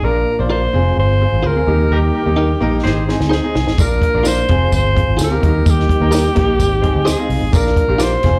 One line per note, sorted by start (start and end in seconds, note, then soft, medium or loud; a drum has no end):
0.03 0.21 A#1 loud
0.03 0.73 A#3 medium
0.03 0.73 D4 medium
0.03 0.26 D4 medium
0.03 0.26 F4 medium
0.03 0.73 F4 medium
0.03 0.26 A#4 medium
0.03 0.38 A#4 loud
0.39 0.66 A#1 loud
0.39 0.61 D4 medium
0.39 0.61 F4 medium
0.39 0.62 C5 medium
0.50 0.61 F4 medium
0.50 0.61 A#4 loud
0.50 0.95 C5 medium
0.50 0.61 D5 loud
0.73 0.92 F1 medium
0.73 1.66 G#3 medium
0.73 1.11 C4 medium
0.73 1.67 C4 medium
0.73 1.67 F4 medium
0.73 1.11 F4 medium
0.73 1.12 G#4 medium
0.97 1.24 G1 medium
0.97 1.48 C5 medium
1.21 1.43 C4 medium
1.21 1.43 F4 medium
1.21 1.43 G#4 medium
1.32 1.42 G#1 medium
1.43 1.62 D2 medium
1.43 1.54 F4 medium
1.43 1.54 G#4 medium
1.43 1.55 C5 medium
1.47 1.95 A#4 medium
1.55 1.67 C4 medium
1.55 1.67 F4 medium
1.55 1.68 G#4 medium
1.67 1.86 D#2 loud
1.67 2.84 G3 medium
1.67 2.14 A#3 medium
1.67 2.84 A#3 medium
1.67 2.14 D#4 medium
1.67 3.76 D#4 medium
1.67 2.15 G4 medium
1.91 2.09 D#2 loud
1.91 1.99 D#4 medium
1.91 1.99 G4 loud
1.91 3.06 G4 medium
1.91 1.99 A#4 loud
2.13 2.24 D#4 medium
2.13 2.24 G4 medium
2.13 2.24 A#4 medium
2.26 2.53 D#2 medium
2.26 2.48 A#3 medium
2.26 2.48 D#4 medium
2.26 2.49 G4 medium
2.36 2.48 D#4 medium
2.36 2.48 G4 medium
2.36 2.48 A#4 medium
2.60 2.79 A#1 medium
2.60 2.84 A#3 medium
2.60 2.84 D#4 medium
2.60 2.85 A#4 loud
2.84 3.12 G#1 medium
2.84 3.77 G#3 medium
2.84 3.78 C4 medium
2.84 3.18 D#4 medium
2.84 3.18 G#4 medium
2.84 3.18 C5 medium
2.84 snare medium
3.09 3.31 C4 medium
3.09 3.31 D#4 medium
3.09 3.31 G#4 medium
3.09 snare medium
3.20 3.38 D2 medium
3.20 snare medium
3.29 3.41 D#4 medium
3.29 3.42 G#4 medium
3.29 3.82 G#4 medium
3.29 3.42 C5 loud
3.29 snare medium
3.44 3.66 C4 medium
3.44 3.66 D#4 medium
3.44 3.66 G#4 medium
3.55 3.64 C2 loud
3.55 snare medium
3.67 3.77 A1 medium
3.67 snare medium
3.78 3.97 A#1 loud
3.78 4.48 A#3 medium
3.78 4.48 D4 medium
3.78 4.01 D4 medium
3.78 5.41 F4 medium
3.78 4.01 F4 medium
3.78 4.01 A#4 medium
3.78 4.29 A#4 loud
3.78 kick loud
3.78 closed hi-hat medium
3.78 tambourine medium
4.02 kick medium
4.02 closed hi-hat medium
4.14 4.41 A#1 medium
4.14 4.36 D4 medium
4.14 4.36 F4 medium
4.14 4.37 A#4 medium
4.23 4.35 F4 medium
4.23 4.35 A#4 medium
4.23 4.36 D5 medium
4.23 snare loud
4.23 closed hi-hat medium
4.23 tambourine medium
4.28 4.74 C5 loud
4.48 4.68 F1 medium
4.48 5.41 G#3 medium
4.48 5.41 C4 medium
4.48 4.87 C4 medium
4.48 4.87 F4 medium
4.48 4.87 G#4 medium
4.48 kick medium
4.48 closed hi-hat medium
4.72 5.00 G1 loud
4.72 5.18 C5 loud
4.72 kick medium
4.72 closed hi-hat medium
4.72 tambourine medium
4.95 5.17 C4 medium
4.95 5.18 F4 medium
4.95 5.18 G#4 medium
4.95 kick medium
4.95 closed hi-hat medium
5.08 5.17 G#1 medium
5.17 5.37 D2 medium
5.17 5.29 F4 medium
5.17 5.29 G#4 medium
5.17 5.29 C5 medium
5.17 closed hi-hat medium
5.17 tambourine medium
5.21 5.72 A#4 medium
5.21 snare medium
5.30 5.42 C4 medium
5.30 5.43 F4 medium
5.30 5.43 G4 medium
5.41 5.61 D#2 loud
5.41 6.59 G3 medium
5.41 5.89 A#3 medium
5.41 6.59 A#3 medium
5.41 5.89 D#4 medium
5.41 7.52 D#4 medium
5.41 5.48 F#4 medium
5.41 kick medium
5.41 closed hi-hat medium
5.48 5.92 G4 medium
5.66 5.84 D#2 medium
5.66 kick loud
5.66 closed hi-hat medium
5.66 tambourine medium
5.70 7.12 G4 loud
5.80 snare soft
5.89 kick medium
5.89 closed hi-hat medium
6.00 6.28 D#2 medium
6.00 6.23 A#3 medium
6.00 6.23 D#4 medium
6.00 6.23 A#4 medium
6.11 6.22 G4 medium
6.11 6.23 A#4 loud
6.11 6.23 D#5 medium
6.11 snare loud
6.11 closed hi-hat medium
6.11 tambourine medium
6.35 6.55 A#1 medium
6.35 6.59 A#3 loud
6.35 6.59 D#4 medium
6.35 6.60 G4 loud
6.35 kick medium
6.35 snare soft
6.35 closed hi-hat medium
6.58 6.87 G#1 medium
6.58 7.52 G#3 medium
6.58 7.52 C4 medium
6.58 kick medium
6.58 closed hi-hat medium
6.58 tambourine medium
6.82 7.05 C4 medium
6.82 7.05 D#4 medium
6.82 7.05 G#4 medium
6.82 kick medium
6.82 closed hi-hat medium
6.95 7.13 D2 medium
7.05 7.16 G#4 medium
7.05 7.17 C5 loud
7.05 7.17 D#5 medium
7.05 snare loud
7.05 closed hi-hat medium
7.05 tambourine medium
7.10 7.58 G#4 medium
7.17 7.40 C4 medium
7.17 7.40 D#4 medium
7.17 7.40 F4 medium
7.29 7.39 C2 loud
7.29 open hi-hat medium
7.42 7.51 A1 medium
7.51 7.72 A#1 loud
7.51 8.22 A#3 medium
7.51 8.22 D4 medium
7.51 7.75 D4 medium
7.51 8.22 F4 medium
7.51 7.76 F4 medium
7.51 7.76 A#4 medium
7.51 kick loud
7.51 closed hi-hat medium
7.51 tambourine medium
7.57 8.04 A#4 loud
7.66 snare soft
7.76 kick medium
7.76 closed hi-hat medium
7.88 8.16 A#1 loud
7.88 8.11 D4 medium
7.88 8.11 F4 medium
7.88 8.11 G4 medium
7.98 8.10 F4 medium
7.98 8.10 A#4 medium
7.98 8.11 D5 loud
7.98 snare loud
7.98 closed hi-hat medium
7.98 tambourine medium
8.03 8.39 C5 loud
8.23 8.39 F1 medium
8.23 8.39 G#3 medium
8.23 8.39 C4 medium
8.23 8.39 F4 medium
8.23 8.39 G#4 loud
8.23 kick medium
8.23 snare soft
8.23 closed hi-hat medium